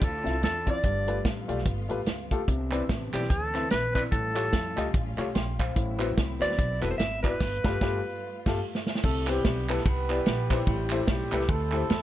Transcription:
Already playing: C4 D4 E4 F4
0.02 D2 A4, kick, closed hi-hat
0.24 C2 C4 E4 F4 E5, snare, closed hi-hat
0.42 E2 A4, snare, closed hi-hat
0.66 C4 E4 F4 D5, kick, closed hi-hat
0.70 D5
0.82 G1 G2 G3 A3 B3 F4, kick, closed hi-hat
1.07 A3 F4 G4 B4, closed hi-hat
1.25 A1, kick, snare, closed hi-hat
1.48 B1 A3 F4 G4 D5, closed hi-hat
1.58 snare
1.66 G1, kick, closed hi-hat
1.89 A1 A3 F4 G4 B4, closed hi-hat
2.06 C#2, snare, closed hi-hat
2.31 A3 F4 G4 A4, kick, closed hi-hat
2.48 C2 C3 E3 B3 C4 D4, kick, closed hi-hat
2.71 C4 E4 B4 D5, clap, closed hi-hat
2.89 A1, kick, snare, closed hi-hat
3.13 B1 C4 E4 G4 B4 D5, clap, closed hi-hat
3.22 snare
3.30 D2 A4, kick, closed hi-hat
3.54 C4 E4 B4 E5, snare, clap, closed hi-hat
3.70 A#1 B4, snare, closed hi-hat
3.94 C4 E4 B4 D5, kick, clap, closed hi-hat
4.11 A1 A2 G3 A3 C#4 F4 A4, kick, closed hi-hat
4.35 A3 F4 G4 C#5, clap, closed hi-hat
4.53 F2, kick, snare, closed hi-hat
4.76 C#2 A3 F4 G4 D#5, clap, closed hi-hat
4.94 A1, kick, closed hi-hat
5.17 C2 A3 F4 G4 C#5, clap, closed hi-hat
5.35 A#1 G5 C6, snare, closed hi-hat
5.59 C5 F5, kick, clap, closed hi-hat
5.75 A1 A2 F#3 B3 C4 E4, kick, closed hi-hat
5.99 B3 E4 F#4 C5, clap, closed hi-hat
6.18 C2, kick, snare, closed hi-hat
6.40 D2 B3 E4 F#4 C5 D5, clap, closed hi-hat
6.51 snare
6.59 B1, kick, closed hi-hat
6.81 E1 B3 E4 F#4 A4 B4, clap, closed hi-hat
6.91 C5
6.98 G#1 E5, snare, closed hi-hat
7.23 B3 E4 F#4 B4 D5, kick, clap, closed hi-hat
7.39 G1 G3 A3 F4, kick, snare, crash
7.64 G1 A3 F4 G4 B4, kick, snare
7.81 G1 A3 F4 G4 B4, kick, snare
8.46 G1 A3 F4 G4 A4, kick, snare, crash
8.75 snare
8.87 snare
8.95 snare
9.03 C2 C3 A3 E4 A4, kick, crash
9.27 G3 B3 E4 G4 C5, clap, ride
9.45 B1, kick, snare, ride
9.69 A3 B3 E4 G4 A4 B4, clap, ride
9.77 snare
9.86 C2 B3 E4 G4 B4, kick, ride
10.09 B3 E4 G4 D5, clap, ride
10.26 A#1, snare, ride
10.50 G3 B3 C4 E4 G4 C5, kick, clap, ride
10.67 A1 A2, kick, ride
10.90 A3 E4 G4 C5, clap, ride
11.07 B1 G3 C4 E4 G4, kick, snare, ride
11.32 C2 A3 E4 G4 B4, clap, ride
11.41 snare
11.49 D2 A3 C4 E4 A4, kick, ride
11.72 A3 E4 G4 C5, clap, ride
11.90 E2, snare, ride

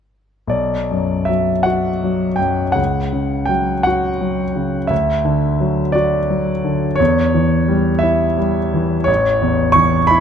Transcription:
0.47 B1 D5
0.91 F#2
1.25 F#3 E5
1.63 F#4 F#5
2.04 F#3
2.36 F#2 G5
2.72 C#2 F#5
3.13 C#3
3.46 F#3 G5
3.83 F#4 F#5
4.21 F#3
4.56 C#3
4.87 D2 E5
5.25 D3
5.60 F#3
5.92 F#4 D5
6.30 F#3
6.65 D3
6.96 C#5
7.00 E2
7.35 E3
7.68 G3
7.99 E5
8.03 E4
8.38 G3
8.74 E3
9.04 A1 C#5
9.42 E2
9.72 E3 C#6
10.07 E4 B5

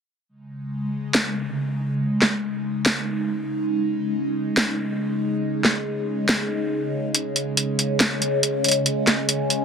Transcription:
0.29 C#3 G#3 D#4
1.15 snare
2.22 snare
2.86 snare
4.57 snare
5.65 snare
6.29 snare
7.15 C#4, closed hi-hat
7.36 closed hi-hat
7.57 closed hi-hat
7.79 closed hi-hat
8.00 snare, closed hi-hat
8.22 closed hi-hat
8.43 closed hi-hat
8.64 closed hi-hat
8.68 closed hi-hat
8.71 closed hi-hat
8.86 closed hi-hat
9.07 snare, closed hi-hat
9.29 closed hi-hat
9.50 closed hi-hat

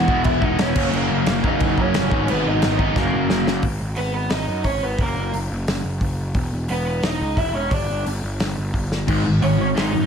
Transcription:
Already playing: F#4 F#5
0.07 E1 E3 G#3 B3 E4, kick
0.24 E1 E4 E5, kick, crash
0.42 E1 D#4 D#5, kick
0.58 E1 C#4 C#5, snare, crash
0.75 F#1 F#2 C#3 F#3 A#3 C#4, kick, crash
0.93 F#1 A#3 A#4, crash
1.11 F#1
1.26 F#1, snare, crash
1.43 F#1 F#2 C#3 F#3 A#3 C#4, kick
1.47 D#4 D#5
1.60 F#1, kick, crash
1.78 F#1 C#4 C#5, kick
1.94 G1, snare, crash
2.10 G#1 G#2 D#3 G#3 B3 D#4, kick
2.28 G#1 B3 B4, crash
2.47 G#1 D#4 D#5
2.62 G#1, snare, crash
2.78 G#1 G#2 D#3 G#3 B3 D#4 D#5, kick
2.95 F#1 F#2 C#3 F#3 A#3 C#4 A#4, kick, snare
3.14 F#1
3.30 F#1, snare
3.47 snare
3.62 G#1, kick, open hi-hat
3.81 G#1
3.96 G#1 B3 B4, open hi-hat
4.13 B3 B4
4.30 G#1 D#4 D#5, snare, open hi-hat
4.48 F#2
4.64 G#1 C#4 C#5, kick, open hi-hat
4.83 G#1 B3 B4
4.98 F#1 A#3 A#4, kick, open hi-hat
5.17 F#1
5.33 F#1, open hi-hat
5.51 F#1
5.67 F#1, snare, open hi-hat
5.84 F#1
6.01 F#1, kick, open hi-hat
6.34 E1, kick, open hi-hat
6.53 E1
6.68 E1 B3, open hi-hat
6.72 B4
6.86 B3 B4
7.03 E1 D#4 D#5, snare, open hi-hat
7.21 C#2
7.37 E1 E4 E5, kick, open hi-hat
7.54 E1 C#4 C#5
7.71 G1 D4 D5, kick, open hi-hat
7.90 G1
8.06 G1, open hi-hat
8.23 G1
8.40 G1, snare, open hi-hat
8.58 G1
8.74 G1, kick, open hi-hat
8.92 snare
9.07 G#1 G#2 D#3 G#3, kick, crash
9.25 G#1 G#2 D#3
9.42 G#1 G#2 D#3 C#4 C#5, open hi-hat
9.58 G#2 D#3 C#4 C#5
9.75 G#1 G#2 D#3 G#3 D#4 D#5, snare, open hi-hat
9.93 F#2 G#2 D#3

